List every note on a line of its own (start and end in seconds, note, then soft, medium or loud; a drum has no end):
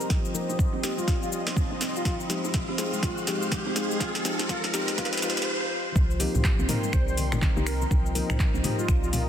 0.00 2.01 G4 medium
0.00 2.02 C5 medium
0.00 5.43 D#5 medium
0.00 riser medium
0.00 cabasa soft
0.10 0.41 C2 loud
0.10 0.24 F3 loud
0.10 5.43 C6 medium
0.10 kick loud
0.10 snare medium
0.10 cabasa medium
0.25 cabasa soft
0.34 0.48 F3 loud
0.34 0.81 A#3 medium
0.34 0.81 C4 medium
0.34 0.81 D#4 medium
0.34 0.81 A#4 medium
0.34 cabasa medium
0.49 0.56 C2 medium
0.49 mid tom medium
0.49 cabasa soft
0.58 0.73 F3 medium
0.58 kick loud
0.58 cabasa medium
0.73 0.80 C2 medium
0.73 0.79 C4 loud
0.83 2.04 A#3 medium
0.83 2.04 C4 medium
0.83 2.04 D#4 medium
0.83 2.04 G4 loud
0.83 snare medium
0.83 mid tom medium
0.83 cabasa medium
0.97 1.03 G3 loud
0.97 1.18 F4 medium
0.97 cabasa soft
1.08 1.48 C2 medium
1.08 kick loud
1.08 snare medium
1.08 cabasa medium
1.22 1.31 F3 medium
1.22 1.29 F4 medium
1.22 cabasa soft
1.32 1.41 F4 medium
1.32 cabasa loud
1.46 1.61 G1 medium
1.46 1.56 D#4 medium
1.46 snare medium
1.46 cabasa soft
1.56 1.69 C4 medium
1.56 kick loud
1.56 cabasa medium
1.71 2.00 C2 loud
1.80 1.94 C4 medium
1.80 snare medium
1.80 mid tom medium
1.80 cabasa loud
1.96 2.02 F4 medium
1.96 cabasa soft
2.05 2.36 F2 loud
2.05 2.19 F3 medium
2.05 5.44 G#3 medium
2.05 2.15 F4 medium
2.05 5.44 F5 medium
2.05 kick loud
2.05 snare medium
2.05 cabasa medium
2.20 cabasa soft
2.29 2.43 F3 loud
2.29 2.76 G#3 medium
2.29 2.76 C4 medium
2.29 2.76 D#4 medium
2.29 2.76 G4 medium
2.29 snare medium
2.29 cabasa loud
2.44 2.51 F2 medium
2.44 mid tom medium
2.44 cabasa soft
2.54 2.68 F3 medium
2.54 kick loud
2.54 snare medium
2.54 cabasa medium
2.68 2.75 F2 medium
2.68 2.74 C4 medium
2.78 3.00 G#3 medium
2.78 3.00 C4 medium
2.78 3.00 D#4 medium
2.78 3.00 G#4 medium
2.78 snare medium
2.78 mid tom medium
2.78 cabasa loud
2.92 2.98 G#3 medium
2.92 cabasa soft
3.03 3.43 F2 medium
3.03 3.17 F3 loud
3.03 3.12 F4 medium
3.03 kick loud
3.03 snare medium
3.03 cabasa medium
3.18 cabasa soft
3.27 3.41 F3 loud
3.27 3.74 G#3 medium
3.27 3.74 C4 medium
3.27 3.74 D#4 medium
3.27 3.74 G4 medium
3.27 snare medium
3.27 cabasa loud
3.41 3.56 C2 medium
3.41 cabasa soft
3.52 3.66 F3 medium
3.52 kick loud
3.52 snare medium
3.52 cabasa medium
3.66 3.95 F2 loud
3.66 3.72 C4 loud
3.76 3.97 G#3 medium
3.76 3.97 C4 medium
3.76 3.97 D#4 medium
3.76 3.97 G#4 medium
3.76 snare medium
3.76 cabasa loud
3.91 3.96 G#3 loud
3.91 cabasa soft
4.00 4.32 F2 loud
4.00 4.14 F3 loud
4.00 4.10 F4 medium
4.00 kick loud
4.00 snare medium
4.00 cabasa medium
4.15 snare medium
4.15 cabasa soft
4.24 4.38 F3 loud
4.24 4.48 G#3 medium
4.24 4.48 C4 medium
4.24 4.48 D#4 medium
4.24 4.48 G4 loud
4.24 snare medium
4.24 cabasa medium
4.39 4.46 F2 medium
4.39 snare medium
4.39 mid tom medium
4.39 cabasa soft
4.49 4.63 F3 loud
4.49 4.59 F4 medium
4.49 kick loud
4.49 snare loud
4.49 cabasa medium
4.64 4.70 F2 medium
4.64 snare medium
4.73 4.87 F3 loud
4.73 4.96 G#3 medium
4.73 4.96 C4 medium
4.73 4.96 D#4 medium
4.73 4.96 G4 loud
4.73 snare loud
4.73 mid tom medium
4.73 cabasa loud
4.88 snare medium
4.88 cabasa soft
4.98 5.38 F2 medium
4.98 5.12 F3 loud
4.98 5.21 G#3 medium
4.98 5.21 C4 medium
4.98 5.21 D#4 medium
4.98 5.07 F4 medium
4.98 5.21 G4 loud
4.98 kick loud
4.98 snare loud
4.98 cabasa medium
5.05 snare medium
5.13 snare medium
5.13 cabasa soft
5.17 snare medium
5.22 5.36 F3 loud
5.22 5.45 G#3 medium
5.22 5.45 C4 medium
5.22 5.45 D#4 medium
5.22 5.32 F4 medium
5.22 5.45 G4 loud
5.22 snare loud
5.22 cabasa loud
5.30 snare medium
5.37 snare loud
5.37 cabasa soft
5.42 snare loud
5.96 6.27 C2 loud
5.96 6.10 F3 loud
5.96 9.29 A#4 medium
5.96 9.29 D#5 medium
5.96 9.29 G5 medium
5.96 7.89 C6 medium
5.96 kick loud
5.96 cabasa medium
6.11 cabasa soft
6.20 6.33 F3 loud
6.20 6.66 A#3 medium
6.20 6.66 C4 medium
6.20 6.67 D#4 medium
6.20 6.66 G4 loud
6.20 open hi-hat medium
6.20 muted conga medium
6.20 cabasa medium
6.34 6.41 C2 medium
6.34 mid tom medium
6.34 high conga medium
6.34 cabasa soft
6.44 6.59 F3 medium
6.44 kick loud
6.44 clap loud
6.44 muted conga soft
6.44 cabasa medium
6.59 6.66 C2 medium
6.59 6.65 C4 loud
6.59 cabasa soft
6.68 6.90 A#3 medium
6.68 6.90 C4 medium
6.68 6.90 D#4 medium
6.68 6.90 A#4 loud
6.68 mid tom medium
6.68 open hi-hat loud
6.68 muted conga medium
6.68 high conga loud
6.68 low conga loud
6.68 cabasa medium
6.84 6.89 G3 loud
6.84 cabasa soft
6.93 7.34 C2 medium
6.93 7.03 C5 medium
6.93 finger snap loud
6.93 kick loud
6.93 cabasa medium
7.08 7.17 F3 medium
7.08 7.14 C5 medium
7.08 cabasa soft
7.17 open hi-hat loud
7.17 high conga medium
7.17 cabasa loud
7.32 7.47 G1 medium
7.32 7.42 D#4 medium
7.32 finger snap medium
7.32 muted conga medium
7.32 low conga loud
7.32 cabasa soft
7.42 7.55 C4 medium
7.42 kick loud
7.42 clap loud
7.42 high conga loud
7.42 cabasa medium
7.56 7.86 C2 loud
7.56 7.67 A#3 loud
7.56 7.67 C4 medium
7.56 7.67 D#4 medium
7.56 7.67 G4 loud
7.56 muted conga soft
7.56 high conga medium
7.56 cabasa soft
7.66 7.80 C4 medium
7.66 7.88 A#4 medium
7.66 finger snap loud
7.66 open hi-hat loud
7.66 cabasa loud
7.82 muted conga medium
7.82 cabasa soft
7.90 8.22 C2 loud
7.90 8.05 F3 loud
7.90 9.29 A#5 medium
7.90 kick loud
7.90 cabasa medium
8.06 cabasa soft
8.15 8.28 F3 loud
8.15 8.62 A#3 medium
8.15 8.62 C4 medium
8.15 8.62 D#4 medium
8.15 8.62 A#4 medium
8.15 open hi-hat medium
8.15 muted conga medium
8.15 cabasa loud
8.30 8.36 C2 medium
8.30 finger snap medium
8.30 mid tom medium
8.30 cabasa soft
8.39 8.53 F3 medium
8.39 kick loud
8.39 clap loud
8.39 muted conga soft
8.39 cabasa medium
8.54 8.61 C2 medium
8.54 8.59 C4 loud
8.54 cabasa soft
8.64 9.29 A#3 medium
8.64 9.29 C4 medium
8.64 9.29 D#4 medium
8.64 9.29 G4 medium
8.64 mid tom medium
8.64 open hi-hat medium
8.64 muted conga medium
8.64 high conga loud
8.64 low conga loud
8.64 cabasa medium
8.78 8.84 G3 loud
8.78 8.99 F4 medium
8.78 cabasa soft
8.88 9.29 C2 medium
8.88 finger snap loud
8.88 kick loud
8.88 muted conga soft
8.88 cabasa medium
9.02 9.12 F3 medium
9.02 9.09 F4 medium
9.02 cabasa soft
9.12 9.22 F4 medium
9.12 open hi-hat medium
9.12 high conga medium
9.12 low conga loud
9.12 cabasa loud